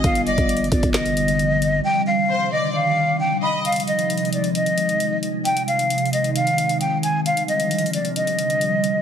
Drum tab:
HH |x--x--x--x--x-x-x-x--x--x--x--x--x--x-----x-----|------------------------------------------------|x-xxx-x--x--x-x-x-x--x--x--x--x--x--x-----x-----|x--x--x--x--x-x-x-x--x--x--x--x--x--x-----x-----|
CP |------------------------x-----------------------|------------------------------------------------|------------------------------------------------|------------------------------------------------|
SD |------------------------o-----------------------|------------------------------------------------|------------------------------------------------|------------------------------------------------|
BD |o--------o--------o--o--------------------------|------------------------------------------------|------------------------------------------------|------------------------------------------------|

HH |x--x--x--x--x-x-x-x--x--x--x--x--x--x-----x-----|
CP |------------------------------------------------|
SD |------------------------------------------------|
BD |------------------------------------------------|